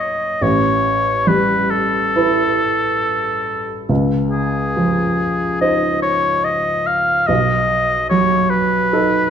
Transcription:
Already playing: grand piano B1 D#4 C#5, oboe D#5
0.41 grand piano A1, oboe C#5
1.27 grand piano G3, oboe B4
1.71 oboe A4
2.16 grand piano E4 B4
3.89 grand piano C#2
4.30 oboe G#4
4.77 grand piano F3
5.61 grand piano D#4 C5, oboe D#5
6.02 oboe C#5
6.44 oboe D#5
6.87 oboe F5
7.27 grand piano B1, oboe D#5
8.09 grand piano F#3, oboe C#5
8.50 oboe B4
8.93 grand piano D#4 A4

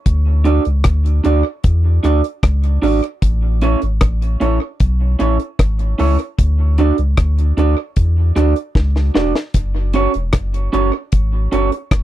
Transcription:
0.06 sub bass D2, kick, closed hi-hat
0.44 clean electric guitar D4 F#4 A4 D5, closed hi-hat
0.65 sub bass C#2, closed hi-hat
0.84 sub bass D2, kick, cross-stick, closed hi-hat
1.06 closed hi-hat
1.24 sub bass D2, clean electric guitar D4 F#4 A4 D5, closed hi-hat
1.64 sub bass E2, kick, closed hi-hat
2.03 sub bass D2, clean electric guitar D4 F#4 A4 D5, cross-stick, closed hi-hat
2.24 closed hi-hat
2.43 sub bass C#2, kick, cross-stick, closed hi-hat
2.64 closed hi-hat
2.82 sub bass G#1, clean electric guitar D4 F#4 A4 D5, open hi-hat
3.04 closed hi-hat
3.22 sub bass A1, kick, closed hi-hat
3.61 clean electric guitar C#4 E4 A4 C#5, closed hi-hat
3.82 sub bass G#1, closed hi-hat
4.01 sub bass A1, kick, cross-stick, closed hi-hat
4.22 closed hi-hat
4.40 sub bass A1, clean electric guitar C#4 E4 A4 C#5, closed hi-hat
4.80 sub bass B1, kick, closed hi-hat
5.19 sub bass A1, clean electric guitar C#4 E4 A4 C#5, closed hi-hat
5.40 closed hi-hat
5.59 sub bass G#1, kick, cross-stick, closed hi-hat
5.79 closed hi-hat
5.98 sub bass C#2, clean electric guitar C#4 E4 A4 C#5, open hi-hat
6.19 closed hi-hat
6.39 sub bass D2, kick, closed hi-hat
6.78 clean electric guitar D4 F#4 A4 D5, closed hi-hat
6.98 sub bass C#2, closed hi-hat
7.17 sub bass D2, kick, cross-stick, closed hi-hat
7.38 closed hi-hat
7.57 sub bass D2, clean electric guitar D4 F#4 A4 D5, closed hi-hat
7.96 sub bass E2, kick, closed hi-hat
8.36 sub bass D2, clean electric guitar D4 F#4 A4 D5, cross-stick, closed hi-hat
8.56 closed hi-hat
8.75 sub bass C#2, kick, snare
8.96 snare
9.15 sub bass E1, clean electric guitar D4 F#4 A4 D5, snare
9.35 snare
9.54 sub bass F#1, kick, closed hi-hat
9.93 clean electric guitar C#4 F#4 A4 C#5, closed hi-hat
10.14 sub bass E1, closed hi-hat
10.33 sub bass F#1, kick, cross-stick, closed hi-hat
10.54 closed hi-hat
10.73 sub bass F#1, clean electric guitar C#4 F#4 A4 C#5, closed hi-hat
10.93 muted clean electric guitar stroke
11.12 sub bass G#1, kick, closed hi-hat
11.52 sub bass F#1, clean electric guitar C#4 F#4 A4 C#5, closed hi-hat
11.72 muted clean electric guitar stroke, closed hi-hat
11.91 sub bass E1, kick, cross-stick, closed hi-hat

